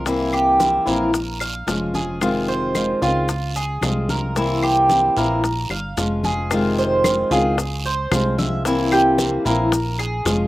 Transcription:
Already playing: analog synth bass C2
0.05 nylon-string guitar C3 E3 A#3 C4 E4, cuban tres E4, high bongo, high conga, long guiro, maracas
0.33 cuban tres G4, high bongo, high conga, claves
0.59 nylon-string guitar E3 A#3 C4 E4, high bongo, high conga, short guiro, maracas
0.86 analog synth bass A#1, nylon-string guitar E3 A#3 C4 E4, cuban tres A#4, high bongo, high conga, short guiro, maracas
1.13 muted nylon-string guitar stroke, high bongo, high conga, long guiro, maracas
1.40 cuban tres F5, high conga, claves, maracas
1.67 analog synth bass F1, nylon-string guitar F3 G#3 C#4 F4, high bongo, low bongo, high conga, short guiro, maracas
1.94 cuban tres G#4, high bongo, high conga, short guiro, maracas
2.21 nylon-string guitar C3 D#3 G#3 C4 F4, high bongo, high conga, long guiro, claves, maracas
2.48 cuban tres C5, high conga
2.75 nylon-string guitar D#3 G#3 C4 F4, high bongo, high conga, short guiro, claves, maracas
3.01 analog synth bass C#2, nylon-string guitar D#3 G#3 C4 F4, cuban tres F4, high conga, short guiro, maracas
3.28 muted nylon-string guitar stroke, high bongo, high conga, long guiro, maracas
3.55 cuban tres G#4, high conga, maracas
3.81 analog synth bass C2, nylon-string guitar F3 G#3 C4 F4, high bongo, low bongo, high conga, short guiro, claves, maracas
4.09 cuban tres A#4, high conga, short guiro, maracas
4.35 nylon-string guitar C3 E3 A#3 C4 E4, cuban tres E4, high bongo, high conga, long guiro, maracas
4.62 cuban tres G4, high bongo, high conga, claves
4.89 nylon-string guitar E3 A#3 C4 E4, high bongo, high conga, short guiro, maracas
5.16 analog synth bass A#1, nylon-string guitar E3 A#3 C4 E4, cuban tres A#4, high bongo, high conga, short guiro, maracas
5.43 muted nylon-string guitar stroke, high bongo, high conga, long guiro, maracas
5.70 analog synth bass G1, cuban tres F5, high conga, claves
5.97 analog synth bass F1, nylon-string guitar F3 G#3 C#4 F4, high bongo, low bongo, high conga, short guiro, maracas
6.23 cuban tres G#4, high bongo, high conga, short guiro, maracas
6.51 nylon-string guitar C3 D#3 G#3 C4 F4, high bongo, high conga, long guiro, claves, maracas
6.77 cuban tres C5, high conga, maracas
7.04 nylon-string guitar D#3 G#3 C4 F4, high bongo, high conga, short guiro, claves, maracas
7.31 analog synth bass C#2, nylon-string guitar D#3 G#3 C4 F4, cuban tres G#4, high conga, short guiro, maracas
7.58 muted nylon-string guitar stroke, high bongo, high conga, long guiro, maracas
7.85 cuban tres C5, high conga, maracas
8.11 analog synth bass C2, nylon-string guitar F3 G#3 C4 F4, high bongo, low bongo, high conga, short guiro, claves, maracas
8.38 cuban tres E5, high conga, short guiro, maracas
8.65 nylon-string guitar C3 E3 A#3 C4 E4, cuban tres E4, high bongo, high conga, long guiro, maracas
8.92 cuban tres G4, high bongo, high conga, claves, maracas
9.18 nylon-string guitar E3 A#3 C4 E4, high bongo, high conga, short guiro, maracas
9.45 analog synth bass A#1, nylon-string guitar E3 A#3 C4 E4, cuban tres A#4, high bongo, high conga, short guiro, maracas
9.72 muted nylon-string guitar stroke, high bongo, high conga, long guiro, maracas
9.99 cuban tres G#4, high bongo, high conga, claves, maracas
10.25 analog synth bass F1, nylon-string guitar F3 G#3 C#4 F4, high bongo, low bongo, high conga, short guiro, maracas

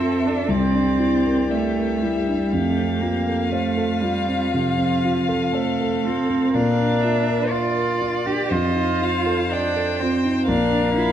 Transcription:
Already playing: grand piano F2 C4 A4 C5, cello C4, violin A4 E5
0.00 grand piano F4
0.24 grand piano C4, cello D4
0.48 grand piano C2, cello C4, violin D5
0.52 violin G4
0.73 grand piano D4
0.99 grand piano E4
1.25 grand piano A#4
1.50 cello A3, grand piano D5, violin E5
1.76 grand piano A#4
2.02 cello G3, grand piano E4
2.28 grand piano D4
2.52 grand piano F2, cello A3, violin F5
2.78 grand piano C4
3.01 cello A#3, grand piano F4
3.28 grand piano A4
3.49 cello A3, violin F4, grand piano C5
3.77 grand piano A4
4.00 cello G3, grand piano F4
4.29 grand piano C4
4.54 grand piano C3, cello F3
4.78 grand piano C4
5.03 grand piano F4
5.28 grand piano A4
5.53 cello A3, violin A4, grand piano C5
5.80 grand piano A4
6.05 cello C4, grand piano F4
6.28 grand piano C4
6.52 grand piano A#2, cello D4, violin A#4 F5
6.80 grand piano D4
7.01 grand piano F4, violin E5
7.27 grand piano A#4
7.50 cello F4, violin D5, grand piano D5
7.75 grand piano A#4
8.01 grand piano F4
8.26 grand piano D4, cello G4
8.49 grand piano F2, cello F4, violin C5 D#5
8.75 grand piano D#4
9.02 grand piano F4, violin F5
9.26 grand piano A4
9.50 cello D4, grand piano D#5, violin G5
9.76 grand piano A4
10.00 cello C4, grand piano F4
10.25 grand piano D#4
10.48 grand piano A#1, cello D4, violin A#4 F5
10.72 grand piano D4
10.95 cello E4, grand piano F4

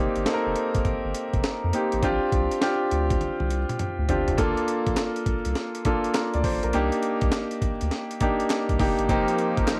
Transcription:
Already playing: grand piano A#3 C4 D#4 G4
0.16 analog synth bass G1, closed hi-hat
0.26 grand piano A#3 C4 D#4 A4, snare, closed hi-hat
0.34 grand piano A#4
0.47 analog synth bass F1
0.56 closed hi-hat
0.75 analog synth bass F1, kick, closed hi-hat
0.85 kick, closed hi-hat
1.05 analog synth bass G1
1.14 closed hi-hat
1.33 analog synth bass F1, kick, closed hi-hat
1.44 snare, closed hi-hat
1.64 analog synth bass F2
1.73 grand piano A#3 C4 D#4 G4, closed hi-hat
1.92 analog synth bass A1, closed hi-hat
2.03 analog synth bass A#1, grand piano C4 D4 F4 G4, kick, closed hi-hat
2.32 analog synth bass C2, kick, closed hi-hat
2.51 closed hi-hat
2.61 grand piano C4 D4 F4 G4, snare, closed hi-hat
2.91 analog synth bass D2, closed hi-hat
3.10 kick, closed hi-hat
3.21 analog synth bass C2, closed hi-hat, high tom
3.40 analog synth bass C2, high tom
3.50 closed hi-hat
3.69 closed hi-hat, mid tom
3.79 closed hi-hat, mid tom
3.99 analog synth bass D2
4.09 analog synth bass G1, grand piano C4 D4 F4 G4, closed hi-hat, floor tom
4.28 analog synth bass F1, closed hi-hat, floor tom
4.38 analog synth bass G1, grand piano A#3 D4 F4 A4, kick, closed hi-hat
4.57 closed hi-hat
4.68 closed hi-hat
4.87 analog synth bass A#1, kick, closed hi-hat
4.97 snare, clap, closed hi-hat
5.16 closed hi-hat
5.26 analog synth bass C2, kick, closed hi-hat
5.45 analog synth bass C2, closed hi-hat
5.55 snare, closed hi-hat
5.75 closed hi-hat
5.85 grand piano A#3 D4 F4 A4, kick, closed hi-hat
6.04 closed hi-hat
6.14 grand piano A#4, snare, clap, closed hi-hat
6.34 analog synth bass D2, grand piano D5, closed hi-hat
6.44 analog synth bass A1, grand piano C5, kick, open hi-hat
6.63 analog synth bass A#1, grand piano A#4, closed hi-hat
6.73 analog synth bass C2, grand piano A#3 D4 D#4 G4, closed hi-hat
6.92 closed hi-hat
7.03 closed hi-hat
7.21 analog synth bass C2, kick, closed hi-hat
7.32 snare, clap, closed hi-hat
7.51 closed hi-hat
7.62 analog synth bass D2, kick, closed hi-hat
7.81 analog synth bass D2, closed hi-hat
7.91 snare, closed hi-hat
8.11 closed hi-hat
8.20 grand piano A#3 D4 D#4 G4, kick, closed hi-hat
8.40 closed hi-hat
8.50 snare, clap, closed hi-hat
8.69 analog synth bass C2, kick, closed hi-hat
8.79 analog synth bass F1, grand piano A#3 D4 D#4 G4, kick, open hi-hat
8.99 analog synth bass G1, closed hi-hat
9.08 analog synth bass F1, analog synth pad F3 D#4 G4 A#4, grand piano A#3 C4 D#4 G4, kick, closed hi-hat
9.28 closed hi-hat
9.38 closed hi-hat
9.57 analog synth bass G1, kick, closed hi-hat
9.68 snare, clap, closed hi-hat

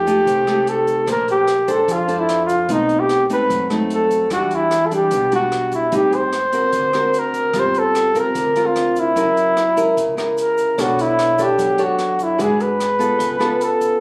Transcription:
Already playing: upright bass F2, nylon-string guitar F3, flugelhorn G4
0.07 nylon-string guitar A3 D#4 G4, kick, closed hi-hat, shaker
0.26 upright bass C2, nylon-string guitar C3, kick, closed hi-hat, shaker
0.47 nylon-string guitar A3 D#4 G4, cross-stick, closed hi-hat, shaker
0.67 flugelhorn A4, closed hi-hat
0.87 kick, closed hi-hat, shaker
1.06 upright bass A#1, nylon-string guitar A#3 D4 A4 C5, kick, cross-stick, closed hi-hat, shaker
1.11 flugelhorn A#4
1.28 flugelhorn G4, closed hi-hat, shaker
1.48 cross-stick, closed hi-hat
1.68 nylon-string guitar D4 A4 C5, kick, closed hi-hat, shaker
1.72 flugelhorn A4
1.88 upright bass F2, nylon-string guitar F3, kick, closed hi-hat, shaker
1.92 flugelhorn F4
2.08 nylon-string guitar D4 A4 C5, closed hi-hat, shaker
2.19 flugelhorn E4
2.29 cross-stick, closed hi-hat
2.46 flugelhorn F4, kick, closed hi-hat, shaker
2.69 upright bass B1, nylon-string guitar B2 A3 C4 D#4, flugelhorn D#4, kick, closed hi-hat, shaker
2.89 closed hi-hat, shaker
3.00 flugelhorn G4
3.09 cross-stick, closed hi-hat
3.30 nylon-string guitar A3 C4 D#4, flugelhorn B4, kick, closed hi-hat, shaker
3.50 upright bass F#2, nylon-string guitar F#3, kick, closed hi-hat, shaker
3.70 nylon-string guitar A3 C4 D#4, cross-stick, closed hi-hat, shaker
3.90 flugelhorn A4, closed hi-hat
4.11 kick, closed hi-hat, shaker
4.30 upright bass E2, nylon-string guitar E3 G3 D4 F#4, flugelhorn F#4, kick, cross-stick, closed hi-hat, shaker
4.51 closed hi-hat, shaker
4.55 flugelhorn E4
4.71 cross-stick, closed hi-hat, shaker
4.86 flugelhorn A4
4.91 nylon-string guitar G3 D4, flugelhorn G4, kick, closed hi-hat, shaker
5.11 upright bass B1, nylon-string guitar B2, kick, closed hi-hat, shaker
5.32 nylon-string guitar G3 D4 F#4, flugelhorn F#4, closed hi-hat, shaker
5.52 cross-stick, closed hi-hat
5.72 flugelhorn E4, kick, closed hi-hat, shaker
5.92 upright bass A1, nylon-string guitar A2 G3 C4 D#4, flugelhorn G4, kick, closed hi-hat, shaker
6.13 flugelhorn C5, closed hi-hat, shaker
6.33 cross-stick, closed hi-hat
6.53 nylon-string guitar C4 F#4 A#4, kick, closed hi-hat, shaker
6.73 upright bass D2, nylon-string guitar D3, kick, closed hi-hat, shaker
6.93 nylon-string guitar C4 F#4 A#4, cross-stick, closed hi-hat, shaker
7.14 closed hi-hat, shaker
7.19 flugelhorn A#4
7.34 kick, closed hi-hat, shaker
7.54 upright bass G1, nylon-string guitar G3 C4 F4, kick, cross-stick, closed hi-hat, shaker
7.59 flugelhorn C5
7.74 closed hi-hat, shaker
7.79 flugelhorn A4
7.95 cross-stick, closed hi-hat, shaker
8.15 nylon-string guitar C4 F4 A#4, kick, closed hi-hat, shaker
8.19 flugelhorn A#4
8.35 upright bass D2, nylon-string guitar D3, kick, closed hi-hat, shaker
8.56 nylon-string guitar C4 F4 A#4, closed hi-hat, shaker
8.66 flugelhorn F4
8.76 cross-stick, closed hi-hat
8.96 kick, closed hi-hat, shaker
9.00 flugelhorn E4
9.16 upright bass F#1, nylon-string guitar F#3 C#4 E4 A#4, kick, closed hi-hat, shaker
9.37 closed hi-hat, shaker
9.57 cross-stick, closed hi-hat, shaker
9.77 nylon-string guitar C#4 E4 A#4, kick, closed hi-hat, shaker
9.97 upright bass C#2, nylon-string guitar C#3, kick, closed hi-hat, shaker
10.17 nylon-string guitar C#4 E4 A#4, cross-stick, closed hi-hat, shaker
10.37 flugelhorn A#4, closed hi-hat, shaker
10.58 kick, closed hi-hat, shaker
10.78 upright bass B1, nylon-string guitar B3 D4 A4 C#5, flugelhorn F#4, tine electric piano C#5, kick, cross-stick, closed hi-hat, shaker
10.99 flugelhorn E4, closed hi-hat, shaker
11.19 cross-stick, closed hi-hat
11.38 nylon-string guitar D4 A4 C#5, kick, closed hi-hat, shaker
11.43 flugelhorn G4
11.59 upright bass F#2, nylon-string guitar F#3, kick, closed hi-hat, shaker
11.78 nylon-string guitar D4 A4 C#5, closed hi-hat, shaker
11.83 flugelhorn F#4
11.99 cross-stick, closed hi-hat
12.19 flugelhorn E4, kick, closed hi-hat, shaker
12.38 upright bass G#1, nylon-string guitar G#3 D4 F#4 B4, flugelhorn G#4, kick, closed hi-hat, shaker
12.60 flugelhorn B4, closed hi-hat, shaker
12.80 cross-stick, closed hi-hat, shaker
12.99 nylon-string guitar B3 F4 A4, kick, closed hi-hat, shaker
13.19 upright bass C#2, nylon-string guitar C#3, tine electric piano B4, kick, closed hi-hat, shaker
13.39 nylon-string guitar B3 F4 A4, cross-stick, closed hi-hat, shaker
13.61 flugelhorn A4, closed hi-hat, shaker
13.81 kick, closed hi-hat, shaker

